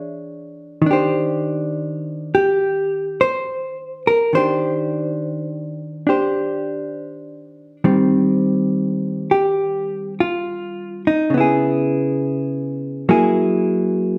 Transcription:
0.00 0.81 E3 soft
0.00 0.84 D4 soft
0.00 0.84 G#4 soft
0.00 0.85 C#5 soft
0.82 4.31 D#3 soft
0.86 4.34 D4 soft
0.91 2.33 G4 soft
0.91 3.20 C5 soft
2.35 3.22 G4 medium
3.21 4.02 C5 medium
4.07 4.34 A#4 medium
4.33 7.83 D#3 soft
4.33 6.06 D4 soft
4.33 6.08 G4 soft
4.33 6.09 C5 medium
6.07 7.82 D4 soft
6.07 7.83 G4 soft
6.07 7.84 C5 soft
7.84 11.30 D#3 soft
7.84 11.33 G3 soft
7.84 11.33 C4 soft
9.31 10.13 G4 soft
10.20 11.02 F4 soft
11.07 11.33 D#4 medium
11.30 13.05 C#3 soft
11.30 13.07 B3 soft
11.38 13.09 E4 soft
11.38 13.10 G#4 soft
13.09 14.18 F#3 soft
13.09 14.18 A#3 soft
13.09 14.18 E4 soft
13.09 14.18 G#4 soft

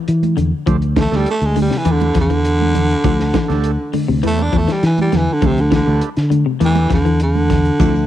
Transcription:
0.00 0.18 E3 medium
0.08 0.34 E3 medium
0.08 closed hi-hat medium
0.23 closed hi-hat soft
0.23 high conga medium
0.37 0.51 E2 medium
0.37 0.62 D3 medium
0.37 closed hi-hat soft
0.37 low conga medium
0.66 1.07 D2 medium
0.66 0.92 F3 medium
0.66 0.77 A3 loud
0.66 0.77 D4 medium
0.66 0.77 G4 medium
0.66 0.77 C5 loud
0.66 kick medium
0.66 closed hi-hat medium
0.66 low conga medium
0.82 closed hi-hat soft
0.96 1.22 E3 medium
0.96 1.02 G4 medium
0.96 1.02 C5 medium
0.96 kick medium
0.96 snare medium
0.96 closed hi-hat soft
0.96 high conga medium
1.00 1.17 A3 medium
1.11 1.25 D2 medium
1.11 1.35 A3 medium
1.11 1.35 D4 medium
1.11 1.35 G4 medium
1.11 1.35 A4 medium
1.11 snare soft
1.11 high conga medium
1.16 1.28 G3 medium
1.26 closed hi-hat medium
1.30 1.46 A3 medium
1.41 1.68 D2 medium
1.41 1.57 G#3 medium
1.41 closed hi-hat soft
1.56 1.69 D3 medium
1.56 open hi-hat medium
1.56 high conga medium
1.62 1.79 G3 medium
1.71 1.83 C3 medium
1.71 snare soft
1.78 1.93 E3 medium
1.85 2.12 E2 loud
1.85 2.11 E3 medium
1.85 2.22 A3 medium
1.85 2.22 D4 medium
1.85 2.22 G4 medium
1.85 2.22 B4 medium
1.85 closed hi-hat medium
1.91 2.18 D3 medium
2.00 closed hi-hat soft
2.00 high conga medium
2.15 2.94 E2 medium
2.15 2.28 F3 medium
2.15 kick medium
2.15 snare soft
2.15 closed hi-hat soft
2.21 3.92 D3 loud
2.30 2.55 E3 medium
2.30 closed hi-hat soft
2.45 closed hi-hat medium
2.61 high conga medium
2.75 3.00 D3 medium
2.75 closed hi-hat medium
2.75 low conga medium
2.90 closed hi-hat soft
3.04 3.31 D2 loud
3.04 3.29 F3 medium
3.04 3.14 A3 loud
3.04 3.14 D4 medium
3.04 3.14 G4 medium
3.04 3.14 C5 loud
3.04 kick medium
3.04 closed hi-hat medium
3.04 low conga medium
3.20 snare soft
3.33 3.59 E3 medium
3.33 3.39 G4 medium
3.33 3.38 C5 medium
3.33 kick medium
3.33 snare medium
3.33 closed hi-hat medium
3.33 high conga medium
3.48 3.76 D2 medium
3.48 3.72 A3 medium
3.48 3.72 D4 medium
3.48 3.72 G4 medium
3.48 3.72 A4 loud
3.48 snare soft
3.48 closed hi-hat soft
3.48 high conga medium
3.64 closed hi-hat medium
3.93 4.06 D3 medium
3.93 open hi-hat medium
3.93 high conga medium
4.08 4.22 D2 medium
4.08 4.21 C3 medium
4.23 4.50 E2 medium
4.23 4.48 E3 medium
4.23 4.60 A3 medium
4.23 4.44 A3 loud
4.23 4.60 D4 medium
4.23 4.60 G4 medium
4.23 4.60 B4 medium
4.23 closed hi-hat medium
4.23 high conga medium
4.39 4.59 D4 medium
4.39 high conga medium
4.53 4.67 E2 medium
4.53 4.66 F3 medium
4.53 kick medium
4.53 closed hi-hat soft
4.57 4.74 A3 medium
4.68 4.93 E3 medium
4.68 snare soft
4.68 closed hi-hat soft
4.72 4.84 G3 medium
4.83 5.09 E3 medium
4.83 4.99 E3 medium
4.83 snare soft
4.83 closed hi-hat medium
4.98 5.18 G3 medium
4.98 closed hi-hat soft
4.98 high conga medium
5.12 5.26 E2 medium
5.12 5.37 D3 medium
5.12 snare soft
5.12 closed hi-hat soft
5.12 low conga medium
5.17 5.34 E3 medium
5.33 5.48 D3 medium
5.42 5.82 D2 medium
5.42 5.67 F3 medium
5.42 5.52 A3 medium
5.42 5.52 D4 medium
5.42 5.52 G4 medium
5.42 5.51 C5 medium
5.42 kick medium
5.42 closed hi-hat medium
5.42 low conga medium
5.46 5.62 C3 medium
5.58 5.73 D3 medium
5.58 closed hi-hat soft
5.71 6.02 D3 medium
5.71 5.97 E3 medium
5.71 5.77 G4 medium
5.71 5.77 B4 medium
5.71 kick medium
5.71 snare medium
5.71 closed hi-hat soft
5.71 high conga medium
5.86 6.00 D2 medium
5.86 6.10 A3 medium
5.86 6.10 D4 medium
5.86 6.10 G4 medium
5.86 6.09 B4 medium
6.01 closed hi-hat medium
6.17 6.43 D3 medium
6.17 snare soft
6.17 closed hi-hat soft
6.30 6.44 D3 medium
6.30 closed hi-hat medium
6.30 high conga medium
6.46 6.59 C3 medium
6.60 6.87 E2 medium
6.60 6.86 E3 medium
6.60 6.98 A3 medium
6.60 6.98 D4 medium
6.60 6.98 G4 medium
6.60 6.98 B4 medium
6.60 closed hi-hat medium
6.60 high conga medium
6.65 6.92 E3 medium
6.76 closed hi-hat soft
6.76 high conga medium
6.90 7.69 E2 medium
6.90 7.21 D3 medium
6.90 7.03 F3 medium
6.90 kick medium
6.90 snare soft
6.90 closed hi-hat soft
7.05 7.31 E3 medium
7.05 closed hi-hat soft
7.20 8.07 D3 medium
7.20 closed hi-hat medium
7.35 high conga medium
7.50 7.75 D3 medium
7.50 kick medium
7.50 snare soft
7.50 closed hi-hat medium
7.50 low conga medium
7.65 closed hi-hat soft
7.79 8.06 D2 loud
7.79 7.95 F3 medium
7.79 8.05 F3 medium
7.79 7.89 A3 medium
7.79 7.95 C4 medium
7.79 7.89 D4 medium
7.79 7.95 E4 medium
7.79 7.89 G4 medium
7.79 7.94 A4 medium
7.79 7.89 C5 medium
7.79 kick medium
7.79 closed hi-hat medium
7.79 low conga medium
7.79 shekere medium
7.95 muted clean electric guitar stroke soft
7.95 shekere soft

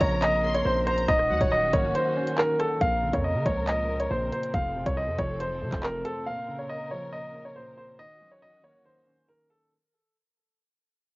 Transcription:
0.00 0.63 A#1 loud
0.00 0.21 A#2 medium
0.00 0.65 C#3 medium
0.00 1.07 C#3 medium
0.00 1.08 F3 medium
0.00 1.04 C4 medium
0.00 1.07 A#4 medium
0.00 0.20 C#5 medium
0.00 0.40 A#5 loud
0.00 kick loud
0.00 closed hi-hat medium
0.22 0.64 A#2 medium
0.22 0.53 D#5 loud
0.22 clap loud
0.22 closed hi-hat medium
0.44 1.08 A#3 medium
0.44 0.84 C6 medium
0.54 0.64 C#5 medium
0.54 closed hi-hat medium
0.65 1.07 A#1 loud
0.65 1.08 A#2 loud
0.65 0.85 C5 medium
0.87 1.08 C4 medium
0.87 1.07 C5 medium
0.87 1.07 A#5 medium
0.87 cross-stick loud
0.87 closed hi-hat medium
0.98 closed hi-hat medium
1.08 1.32 D#1 loud
1.08 1.93 D#3 medium
1.08 2.79 D#3 medium
1.08 2.79 C#4 medium
1.08 2.79 F#4 medium
1.08 1.39 D#5 loud
1.08 kick loud
1.08 closed hi-hat medium
1.19 cross-stick medium
1.30 1.40 D#2 loud
1.30 2.38 F#3 medium
1.30 1.51 F#5 medium
1.41 1.72 D#1 loud
1.41 1.51 C#5 medium
1.41 kick loud
1.41 closed hi-hat medium
1.52 1.72 D#5 loud
1.73 1.94 C#1 loud
1.73 2.81 A#3 loud
1.73 1.93 C#5 medium
1.73 kick loud
1.73 closed hi-hat medium
1.95 2.36 D#3 medium
1.95 2.35 C5 medium
1.95 closed hi-hat medium
2.16 2.81 C#4 medium
2.27 closed hi-hat medium
2.38 2.81 D#3 medium
2.38 2.58 A#4 medium
2.38 clap loud
2.60 2.81 D#4 medium
2.60 2.79 A4 medium
2.60 cross-stick medium
2.60 closed hi-hat medium
2.81 3.12 A#1 loud
2.81 3.66 A#2 medium
2.81 4.52 C#3 medium
2.81 7.95 C4 medium
2.81 4.52 A#4 medium
2.81 3.11 F5 loud
2.81 kick loud
2.81 closed hi-hat medium
3.03 4.11 C#3 medium
3.13 3.37 F2 loud
3.13 3.23 C#5 medium
3.13 kick medium
3.13 closed hi-hat medium
3.24 3.44 D#5 medium
3.35 3.45 C#3 loud
3.46 4.08 C#2 loud
3.46 4.54 F3 medium
3.46 3.66 C#5 medium
3.46 kick loud
3.46 closed hi-hat medium
3.67 4.09 A#2 medium
3.67 3.98 D#5 medium
3.67 clap loud
3.67 closed hi-hat medium
3.89 4.54 A#3 medium
4.00 4.10 C#5 medium
4.00 closed hi-hat medium
4.11 4.31 A#1 loud
4.11 4.54 A#2 loud
4.11 4.30 C5 medium
4.32 4.54 C4 medium
4.32 4.52 C5 medium
4.32 closed hi-hat medium
4.43 closed hi-hat medium
4.54 4.85 F1 loud
4.54 5.39 F2 medium
4.54 6.25 F3 medium
4.54 6.25 A4 medium
4.54 4.84 F5 medium
4.54 kick loud
4.54 closed hi-hat medium
4.75 5.83 C3 medium
4.86 5.09 C2 loud
4.86 4.96 C#5 medium
4.86 kick medium
4.86 closed hi-hat medium
4.97 5.17 D#5 medium
5.08 5.18 F2 loud
5.18 5.63 F1 loud
5.18 6.26 F3 medium
5.18 5.38 C#5 medium
5.18 kick medium
5.18 closed hi-hat medium
5.40 5.82 F2 medium
5.40 5.81 C5 medium
5.40 closed hi-hat medium
5.62 5.72 C3 loud
5.62 6.26 A3 medium
5.72 6.04 F1 loud
5.72 kick medium
5.72 clap medium
5.72 closed hi-hat medium
5.83 6.26 F2 medium
5.83 6.03 A#4 medium
5.83 clap loud
6.05 6.26 C4 medium
6.05 6.25 A4 medium
6.05 closed hi-hat medium
6.26 7.11 A#2 medium
6.26 7.97 C#3 medium
6.26 7.97 A#4 medium
6.26 6.57 F5 loud
6.48 7.56 C#3 medium
6.59 6.69 C#5 medium
6.70 6.89 D#5 medium
6.91 7.99 F3 medium
6.91 7.11 C#5 medium
7.13 7.54 A#2 medium
7.13 7.43 D#5 medium
7.34 7.99 A#3 medium
7.45 7.55 C#5 medium
7.56 7.99 A#2 medium
7.56 7.76 C5 medium
7.78 7.99 C4 medium
7.78 7.97 C5 medium
7.99 8.84 D#3 medium
7.99 9.70 D#3 medium
7.99 9.70 C#4 medium
7.99 9.70 F#4 medium
7.99 8.30 D#5 loud
8.21 9.29 F#3 medium
8.31 8.41 C#5 medium
8.42 8.62 D#5 medium
8.64 9.72 A#3 loud
8.64 8.84 C#5 medium
8.85 9.27 D#3 medium
8.85 9.26 C5 medium
9.07 9.72 C#4 medium
9.29 9.72 D#3 medium
9.29 9.49 A#4 medium
9.50 9.72 D#4 medium
9.50 9.70 A4 medium

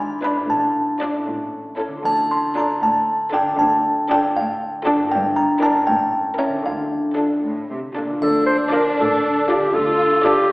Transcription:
0.00 0.20 G#1 medium
0.00 0.34 G#2 medium
0.00 0.43 G#2 soft
0.00 0.35 D4 soft
0.00 0.47 E4 soft
0.00 0.22 G#5 medium
0.23 0.43 D4 soft
0.23 0.43 E4 soft
0.23 0.43 B4 soft
0.23 0.48 B5 medium
0.32 1.08 A2 soft
0.36 1.23 D4 soft
0.40 1.25 F4 soft
0.45 1.22 A4 soft
0.50 0.98 A1 soft
0.50 1.12 A2 soft
0.50 1.75 A5 soft
1.01 1.21 D4 soft
1.01 1.20 F4 soft
1.01 1.20 D5 soft
1.10 1.98 A2 soft
1.14 2.01 C#4 soft
1.19 2.03 E4 soft
1.23 2.00 A4 soft
1.28 1.76 A1 soft
1.28 1.90 A2 soft
1.78 1.98 C#4 soft
1.78 1.98 E4 soft
1.78 1.99 A4 soft
1.88 3.41 D3 soft
1.92 3.45 D4 soft
1.97 3.50 F4 soft
2.01 2.53 D2 soft
2.01 3.54 A4 soft
2.05 2.67 D3 soft
2.05 2.29 A5 medium
2.05 triangle soft
2.31 2.55 C6 medium
2.56 2.76 D4 soft
2.56 2.76 F4 soft
2.56 2.76 A4 soft
2.56 2.81 A#5 soft
2.83 3.44 A2 soft
2.83 3.30 A5 medium
3.33 3.53 D4 soft
3.33 3.52 F4 soft
3.33 3.52 A4 soft
3.33 3.58 G5 medium
3.42 5.05 D3 soft
3.47 4.98 D4 soft
3.51 5.10 F4 soft
3.55 5.12 A4 soft
3.55 4.07 A5 medium
3.60 4.07 D2 medium
3.60 4.21 D3 medium
4.10 4.30 D4 soft
4.10 4.30 F4 medium
4.10 4.29 A4 soft
4.10 4.34 G5 medium
4.36 4.97 A2 medium
4.36 5.08 F5 medium
4.86 5.05 D4 medium
4.86 5.05 F4 medium
4.86 5.05 A4 medium
4.95 5.82 G2 medium
4.99 5.84 D4 soft
5.03 5.78 E4 soft
5.08 5.82 A#4 soft
5.08 5.35 G5 medium
5.12 5.59 G1 medium
5.12 5.73 G2 medium
5.36 5.60 A#5 medium
5.62 5.81 D4 medium
5.62 5.81 E4 medium
5.62 5.82 A#4 soft
5.62 5.86 A5 medium
5.70 6.59 A2 soft
5.75 6.61 C#4 soft
5.79 6.63 E4 soft
5.84 6.65 A#4 soft
5.84 6.35 G5 medium
5.88 6.36 A1 medium
5.88 6.50 A2 medium
6.39 6.58 C#4 soft
6.39 6.58 E4 soft
6.39 6.58 A#4 soft
6.39 6.63 E5 soft
6.48 8.02 D3 soft
6.52 8.07 D4 soft
6.57 8.11 F4 soft
6.61 8.16 A4 soft
6.65 7.14 D2 soft
6.65 7.28 D3 soft
6.65 7.92 F5 soft
7.17 7.37 D4 soft
7.17 7.37 F4 soft
7.17 7.36 A4 soft
7.44 7.68 A2 soft
7.69 7.77 C3 soft
7.95 8.21 A#2 soft
7.95 8.15 D4 soft
7.95 8.15 F4 soft
7.95 8.15 A4 soft
8.04 9.56 D3 soft
8.08 9.60 D4 soft
8.13 9.65 F4 soft
8.17 9.69 A4 soft
8.21 8.83 D2 medium
8.21 8.83 D3 medium
8.21 9.71 D4 medium
8.21 8.45 A4 medium
8.21 triangle soft
8.46 8.58 C5 medium
8.72 8.92 D4 soft
8.72 8.92 F4 soft
8.72 8.84 A#4 soft
8.72 8.91 D5 soft
8.98 9.59 A1 medium
8.98 9.59 A2 soft
8.98 9.48 A4 medium
9.49 9.68 D4 soft
9.49 9.68 F4 soft
9.49 9.76 G4 medium
9.49 9.68 D5 soft
9.57 10.52 D3 soft
9.61 10.52 D4 soft
9.66 10.52 F4 soft
9.70 10.49 F4 medium
9.70 10.52 A4 soft
9.75 10.35 D2 medium
9.75 10.36 D3 medium
9.75 10.26 A4 medium
10.24 10.44 D4 soft
10.24 10.52 G4 medium
10.24 10.44 A4 soft
10.24 10.44 D5 medium

